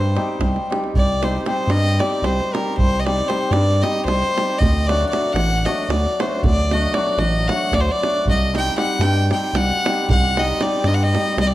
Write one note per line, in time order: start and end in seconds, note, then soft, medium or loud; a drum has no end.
0.00 0.18 G2 loud
0.00 0.14 G3 medium
0.00 0.67 C5 medium
0.00 davul high soft
0.15 0.69 G3 medium
0.15 0.35 C4 medium
0.15 0.35 D#4 medium
0.15 0.35 G4 medium
0.15 davul high soft
0.29 davul high soft
0.40 0.58 C2 medium
0.40 davul high medium
0.40 davul low soft
0.56 davul high soft
0.70 1.00 G3 medium
0.70 0.90 C4 medium
0.70 0.90 D#4 soft
0.70 0.90 G4 medium
0.70 davul high medium
0.84 davul high soft
0.94 1.39 C2 medium
0.94 1.26 D5 medium
0.94 davul low medium
1.22 1.44 G3 soft
1.22 1.41 C4 medium
1.22 1.41 D#4 soft
1.22 1.41 G4 medium
1.22 1.46 C5 medium
1.22 davul high medium
1.35 davul high soft
1.46 1.98 G3 medium
1.46 1.64 C4 medium
1.46 1.65 D#4 medium
1.46 1.65 G4 medium
1.46 1.72 C5 medium
1.46 davul high medium
1.68 2.01 G2 loud
1.68 2.00 D#5 loud
1.68 davul high medium
1.99 2.53 G3 medium
1.99 2.18 C4 medium
1.99 2.18 D#4 medium
1.99 2.19 G4 medium
1.99 2.26 D5 medium
1.99 davul high medium
2.12 davul high soft
2.22 2.41 C2 medium
2.22 2.54 C5 medium
2.22 davul high medium
2.40 davul high soft
2.53 3.05 G3 medium
2.53 2.73 C4 soft
2.53 2.73 D#4 soft
2.53 2.74 G4 medium
2.53 2.77 A#4 medium
2.53 davul high medium
2.67 davul high soft
2.77 3.22 C2 medium
2.77 3.01 C5 medium
2.77 davul low medium
3.00 3.06 D#5 medium
3.05 3.27 G3 medium
3.05 3.24 C4 medium
3.05 3.24 D#4 soft
3.05 3.24 G4 medium
3.05 3.29 D5 medium
3.05 davul high medium
3.28 3.81 G3 medium
3.28 3.47 C4 medium
3.28 3.47 D#4 medium
3.28 3.47 G4 medium
3.28 3.53 C5 medium
3.28 davul high medium
3.51 3.84 G2 loud
3.51 3.84 D5 medium
3.51 davul high medium
3.82 4.34 G3 medium
3.82 4.01 C4 medium
3.82 4.01 D#4 medium
3.82 4.02 G4 medium
3.82 4.04 D#5 medium
3.82 davul high medium
3.95 davul high soft
4.05 4.24 C2 medium
4.05 4.59 C5 loud
4.05 davul high medium
4.22 davul high soft
4.36 4.66 G3 medium
4.36 4.55 C4 soft
4.36 4.56 D#4 soft
4.36 4.56 G4 medium
4.36 davul high medium
4.49 davul high soft
4.58 5.05 D2 loud
4.58 4.88 D#5 medium
4.58 davul low medium
4.87 5.11 F#3 medium
4.87 5.06 A3 medium
4.87 5.07 D4 medium
4.87 5.07 F#4 medium
4.87 5.08 D5 medium
4.87 davul high medium
5.01 davul high soft
5.09 5.65 F#3 medium
5.09 5.34 D5 medium
5.13 5.30 A3 medium
5.13 5.30 D4 soft
5.13 5.31 F#4 medium
5.13 davul high medium
5.32 5.67 A1 loud
5.32 5.67 F#5 loud
5.32 davul high medium
5.65 6.18 F#3 medium
5.65 5.84 A3 medium
5.65 5.84 D4 medium
5.65 5.85 F#4 medium
5.65 5.91 D#5 medium
5.65 davul high medium
5.78 davul high soft
5.89 6.07 D2 medium
5.89 6.21 D5 medium
5.89 davul high medium
6.06 davul high soft
6.19 6.71 F#3 medium
6.19 6.39 A3 soft
6.19 6.38 D4 medium
6.19 6.39 F#4 medium
6.19 6.44 C5 medium
6.19 davul high medium
6.33 davul high soft
6.43 6.87 D2 medium
6.43 6.75 D5 loud
6.43 davul low medium
6.59 davul high soft
6.71 6.95 F#3 medium
6.71 6.90 A3 soft
6.71 6.90 D4 medium
6.71 6.90 F#4 medium
6.71 6.95 D#5 medium
6.71 davul high medium
6.94 7.47 F#3 medium
6.94 7.13 A3 medium
6.94 7.14 D4 medium
6.94 7.14 F#4 medium
6.94 7.21 D5 medium
6.94 davul high medium
7.06 davul high soft
7.18 7.50 A1 loud
7.18 7.49 D#5 medium
7.18 davul high medium
7.48 8.00 F#3 soft
7.48 7.67 A3 medium
7.48 7.67 D4 medium
7.48 7.68 F#4 medium
7.48 7.76 F#5 medium
7.48 davul high medium
7.61 davul high soft
7.72 7.90 D2 medium
7.72 7.82 D5 loud
7.72 davul high medium
7.72 davul low medium
7.80 7.92 C5 medium
7.88 8.28 D5 loud
7.88 davul high soft
8.02 8.31 F#3 medium
8.02 8.21 A3 soft
8.02 8.21 D4 medium
8.02 8.22 F#4 medium
8.02 davul high medium
8.16 davul high soft
8.26 8.70 C2 medium
8.26 8.53 D#5 medium
8.26 davul low medium
8.53 8.75 G3 soft
8.53 8.72 C4 medium
8.53 8.72 D#4 medium
8.53 8.72 G4 medium
8.53 8.77 G5 medium
8.53 davul high medium
8.67 davul high soft
8.76 9.29 G3 medium
8.76 8.95 C4 medium
8.76 8.95 D#4 medium
8.76 8.96 G4 medium
8.76 9.04 F#5 medium
8.76 davul high medium
8.99 9.32 G2 loud
8.99 9.32 G5 loud
8.99 davul high medium
9.30 9.84 G3 medium
9.30 9.49 C4 soft
9.30 9.49 D#4 soft
9.30 9.50 G4 medium
9.30 9.58 G5 medium
9.30 davul high medium
9.44 davul high soft
9.53 9.72 C2 medium
9.53 10.09 F#5 loud
9.53 davul high medium
9.70 davul high soft
9.85 10.35 G3 medium
9.85 10.04 C4 soft
9.85 10.04 D#4 medium
9.85 10.05 G4 medium
9.85 davul high medium
9.98 davul high soft
10.09 10.54 C2 loud
10.09 10.40 F#5 loud
10.09 davul low loud
10.36 10.59 G3 medium
10.36 10.55 C4 soft
10.36 10.55 D#4 medium
10.36 10.56 G4 medium
10.36 10.64 D#5 loud
10.36 davul high medium
10.50 davul high soft
10.60 11.12 G3 medium
10.60 10.79 C4 medium
10.60 10.79 D#4 medium
10.60 10.79 G4 medium
10.60 10.88 D5 medium
10.60 davul high medium
10.84 11.17 G2 loud
10.84 10.96 D#5 medium
10.84 davul high medium
10.94 11.04 F#5 medium
11.03 11.40 D#5 loud
11.13 11.54 G3 medium
11.13 11.33 C4 soft
11.13 11.33 D#4 medium
11.13 11.33 G4 medium
11.13 davul high medium
11.27 davul high soft
11.38 11.54 C2 medium
11.38 11.48 D#5 loud
11.38 davul high medium
11.47 11.54 D5 medium